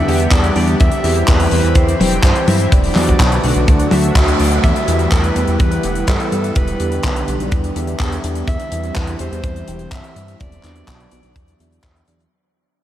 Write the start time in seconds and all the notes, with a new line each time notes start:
Already playing: D3 G3 B3 G4 E5
0.08 E2 E3 B3 D4 G4 E5, open hi-hat
0.20 closed hi-hat
0.31 E2 D5, kick, clap, closed hi-hat
0.44 closed hi-hat
0.56 E2 B3 D4 G4 D5, open hi-hat
0.68 closed hi-hat
0.80 E2 E3 C4 E5, kick, closed hi-hat
0.92 closed hi-hat
1.04 E2 E3 C4 E4 G4 E5, open hi-hat
1.15 closed hi-hat
1.27 E2 B4, kick, clap, closed hi-hat
1.40 open hi-hat
1.51 E2 E3 C4 E4 G4 E5, open hi-hat
1.64 E2, closed hi-hat
1.75 E2 C5, kick, closed hi-hat
1.88 closed hi-hat
2.00 E1 E3 C4 E4 G4 G5, open hi-hat, high tom
2.12 closed hi-hat
2.23 G2 C5, kick, clap, closed hi-hat
2.35 closed hi-hat
2.48 G2 C4 E4 G4 E5, open hi-hat, high tom
2.59 closed hi-hat
2.72 E1 D3 F#3 B3 F#4 D5, kick, closed hi-hat
2.84 open hi-hat
2.95 E2 E3 B3 D4 F#4 D5, clap, open hi-hat, high tom
3.08 kick, closed hi-hat
3.20 B1, kick, clap, closed hi-hat
3.32 closed hi-hat
3.44 B1 D3 A3 D4 F#4 D5, open hi-hat
3.55 B1, closed hi-hat
3.68 D2 F#3 A3, kick, closed hi-hat
3.79 closed hi-hat
3.91 D2 D3 A3 D4 F#4 E5, open hi-hat, high tom
4.03 closed hi-hat
4.15 D2, kick, clap, closed hi-hat
4.28 closed hi-hat
4.39 D2 A3 D4 F#4 D5, open hi-hat
4.52 closed hi-hat
4.64 E2 E3 G3 B3 G4 E5, kick, closed hi-hat
4.76 closed hi-hat
4.88 E2 E3 B3 E4 G4 E5, closed hi-hat
4.99 closed hi-hat
5.12 E2 B4, kick, clap, closed hi-hat
5.24 closed hi-hat
5.36 E2 E3 B3 E4 G4 E5, closed hi-hat
5.48 E2, closed hi-hat
5.60 E2 B4, kick, closed hi-hat
5.72 closed hi-hat
5.83 E1 E3 B3 E4 G4 F#5, closed hi-hat
5.95 closed hi-hat
6.07 G2 A4, kick, clap, closed hi-hat
6.20 closed hi-hat
6.32 G2 E3 B3 E4 G4 E5, closed hi-hat
6.44 closed hi-hat
6.55 E1 D3 G3 G4 B4, kick, closed hi-hat
6.67 closed hi-hat
6.80 E2 E3 B3 D4 G4 D5, closed hi-hat
6.92 closed hi-hat
7.03 B1 B4, kick, clap, closed hi-hat
7.16 closed hi-hat
7.28 B1 E3 B3 D4 G4 D5, closed hi-hat
7.40 B1, closed hi-hat
7.52 E2, kick, closed hi-hat
7.64 closed hi-hat
7.76 E2 E3 B3 D4 G4 E5, closed hi-hat
7.87 closed hi-hat
8.00 E2, kick, clap, closed hi-hat
8.12 closed hi-hat
8.24 E2 B3 D4 G4 D5, closed hi-hat
8.35 closed hi-hat
8.48 E2 E3 G3 C4 E5, kick, closed hi-hat
8.60 closed hi-hat
8.72 E2 E3 C4 E4 G4 E5, closed hi-hat
8.84 closed hi-hat
8.95 E2 B4, kick, clap, closed hi-hat
9.07 closed hi-hat
9.19 E2 E3 C4 E4 G4 C5 E5, closed hi-hat
9.32 E2, closed hi-hat
9.44 E2, kick, closed hi-hat
9.56 closed hi-hat
9.68 E1 E3 C4 E4 G4 G5, closed hi-hat
9.79 closed hi-hat
9.92 G2 E5, kick, clap, closed hi-hat
10.04 closed hi-hat
10.16 G2 C4 E4 G4 E5, closed hi-hat
10.28 closed hi-hat
10.40 E1 D3 F#3 B3 F#4 D5, kick, closed hi-hat
10.52 closed hi-hat
10.63 E2 E3 B3 D4 F#4 D5, clap, closed hi-hat
10.76 closed hi-hat
10.88 B1, kick, clap, closed hi-hat
11.00 closed hi-hat
11.11 B1 E3 B3 D4 F#4 D5, closed hi-hat
11.23 B1, closed hi-hat
11.36 E2, kick, closed hi-hat
11.48 closed hi-hat
11.60 E2 E3 B3 D4 F#4 E5, closed hi-hat
11.72 closed hi-hat
11.84 E2, kick, clap, closed hi-hat
11.96 closed hi-hat
12.08 E2 E3 B3 D4 F#4 D5, closed hi-hat
12.20 closed hi-hat